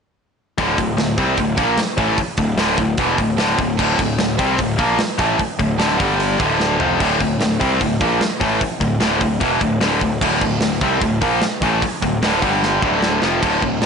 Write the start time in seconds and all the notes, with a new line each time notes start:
0.58 D1 D2 A2 D3, kick, open hi-hat
0.78 D1 D2 A2, kick, open hi-hat
0.97 D1 D2 A2, snare, open hi-hat
1.18 C2 C3 G3 C4, kick, open hi-hat
1.37 D1 D2 A2, kick, open hi-hat
1.57 A#1 A#2 F3 A#3, kick, open hi-hat
1.78 snare, open hi-hat
1.97 A1 A2 E3 A3, kick, open hi-hat
2.18 muted picked electric bass stroke, muted distorted electric guitar stroke, kick, open hi-hat
2.37 D1 D2 A2, kick, open hi-hat
2.56 D1 D2 A2 D3, snare, open hi-hat
2.77 D1 D2 A2, kick, open hi-hat
2.98 E1 E2 B2 E3, kick, open hi-hat
3.18 D1 D2 A2, kick, open hi-hat
3.36 D1 D2 A2 D3, snare, open hi-hat
3.58 D1 D2 A2, kick, open hi-hat
3.79 D1 D2 A2 D3, kick, crash
3.98 D1 D2 A2, kick, open hi-hat
4.18 D1 D2 A2, snare, open hi-hat
4.38 C2 C3 G3 C4, kick, open hi-hat
4.58 D1 D2 A2, kick, open hi-hat
4.78 A#1 A#2 F3 A#3, kick, open hi-hat
4.99 snare, open hi-hat
5.18 A1 A2 E3 A3, kick, open hi-hat
5.39 muted distorted electric guitar stroke, muted picked electric bass stroke, kick, open hi-hat
5.59 D1 D2 A2, kick, open hi-hat
5.78 D1 D2 A2 D3, snare, open hi-hat
5.99 G1 G2 D3 G3, kick, open hi-hat
6.20 open hi-hat
6.39 D1 D2 A2 D3, kick, open hi-hat
6.60 snare
6.80 F1 F2 C3 F3, floor tom
7.00 D1 D2 A2 D3, kick, open hi-hat, crash
7.20 D1 D2 A2, kick, open hi-hat
7.39 D1 D2 A2, snare, open hi-hat
7.60 C2 C3 G3 C4, kick, open hi-hat
7.80 D1 D2 A2, kick, open hi-hat
8.01 A#1 A#2 F3 A#3, kick, open hi-hat
8.21 snare, open hi-hat
8.40 A1 A2 E3 A3, kick, open hi-hat
8.60 muted distorted electric guitar stroke, muted picked electric bass stroke, kick, open hi-hat
8.80 D1 D2 A2, kick, open hi-hat
9.00 D1 D2 A2 D3, snare, open hi-hat
9.21 D1 D2 A2, kick, open hi-hat
9.40 E1 E2 B2 E3, kick, open hi-hat
9.60 D1 D2 A2, kick, open hi-hat
9.80 D1 D2 A2 D3, snare, open hi-hat
10.01 D1 D2 A2, kick, open hi-hat
10.21 D1 D2 A2 D3, kick, crash
10.41 D1 D2 A2, kick, open hi-hat
10.60 D1 D2 A2, snare, open hi-hat
10.81 C2 C3 G3 C4, kick, open hi-hat
11.01 D1 D2 A2, kick, open hi-hat
11.21 A#1 A#2 F3 A#3, kick, open hi-hat
11.42 snare, open hi-hat
11.61 A1 A2 E3 A3, kick, open hi-hat
11.82 muted picked electric bass stroke, muted distorted electric guitar stroke, kick, open hi-hat
12.02 D1 D2 A2, kick, open hi-hat
12.21 D1 D2 A2 D3, snare, open hi-hat
12.42 G1 G2 D3 G3, kick, open hi-hat
12.63 snare
12.82 D1 D2 A2 D3, kick
13.03 snare
13.22 F1 F2 C3 F3, snare
13.43 D1 D2 A2 D3, kick, crash
13.62 D1 D2 A2, kick
13.81 F1 F2 C3 F3, snare, open hi-hat